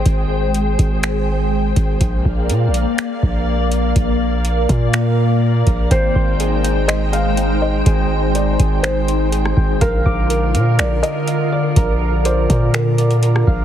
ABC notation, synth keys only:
X:1
M:4/4
L:1/8
Q:1/4=123
K:Ablyd
V:1 name="Synth keys"
z8 | z8 | z8 | g c A g c A g c |
A2 c A2 c A g | f d' B f2 B f d | B2 d B2 d B f |]